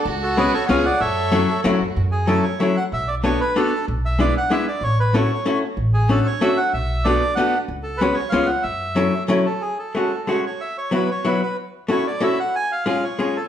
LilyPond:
<<
  \new Staff \with { instrumentName = "Bandoneon" } { \time 3/4 \key fis \minor \tempo 4 = 188 << { r8 a'8 b'8 cis''16. fis''32 eis''8 fis''8 | e''2 r4 | r8 gis'8 a'8 cis''8 e''8 fis''8 | e''8 d''8 cis''8 b'8 a'4 |
r8 e''8 d''8 fis''8 e''8 d''8 | cis''8 b'8 cis''4. r8 | r8 gis'8 a'8 cis''8 e''8 fis''8 | e''4 d''4 fis''8. r16 |
r8 a'8 b'8 cis''8 eis''8 fis''8 | e''2 r8 a'8 | gis'8 a'4. cis''8 cis''8 | e''8 cis''8 b'8 cis''8 b'8 b'8 |
r4 cis''8 d''8 e''8 fis''8 | gis''8 eis''8 eis''8 cis''8 cis''8 a'16. r32 | } \\ { r8 fis'8 gis'8 a'8 cis''8 d''8 | cis''2 r4 | r2. | r2. |
r2. | r2. | r2. | r2. |
r2. | r2. | r2. | r2. |
r2. | r2. | } >> }
  \new Staff \with { instrumentName = "Violin" } { \time 3/4 \key fis \minor fis'2 gis'4 | a'2 fis'4 | r2. | r2. |
r2. | r2. | r2. | r2. |
r2. | r2. | r2. | r2. |
r2. | r2. | }
  \new Staff \with { instrumentName = "Hollow-body jazz guitar" } { \time 3/4 \key fis \minor r4 <gis b cis' fis'>8 r8 <gis b cis' eis'>8 r8 | r4 <fis a cis' e'>8 r8 <fis a cis' e'>8 r8 | r4 <fis a cis' e'>8 r8 <fis a cis' e'>8 r8 | r4 <a b d' fis'>8 r8 <a b d' fis'>8 r8 |
r4 <gis b d' e'>8 r8 <gis b d' e'>8 r8 | r4 <a cis' e' fis'>8 r8 <a cis' e' fis'>8 r8 | r4 <a cis' d' fis'>8 r8 <a cis' d' fis'>8 r8 | r4 <a b d' fis'>8 r8 <a b d' fis'>8 r8 |
r4 <gis b cis' fis'>8 r8 <gis b cis' eis'>8 r8 | r4 <fis a cis' e'>8 r8 <fis a cis' e'>8 r8 | r4 <gis a cis' fis'>8 r8 <gis a cis' fis'>8 r8 | r4 <fis b e' fis'>8 r8 <fis b e' fis'>8 r8 |
r4 <a cis' e' fis'>8 r8 <a cis' e' fis'>8 r8 | r4 <gis cis' eis' gis'>8 r8 <gis cis' eis' gis'>8 r8 | }
  \new Staff \with { instrumentName = "Upright bass" } { \clef bass \time 3/4 \key fis \minor cis,2 cis,4 | fis,2 e,8 fis,8 | fis,2 r4 | b,,2 r4 |
b,,2 r4 | a,,2 r4 | a,,2 r4 | b,,2 r4 |
cis,2 cis,4 | fis,2 r4 | r2. | r2. |
r2. | r2. | }
>>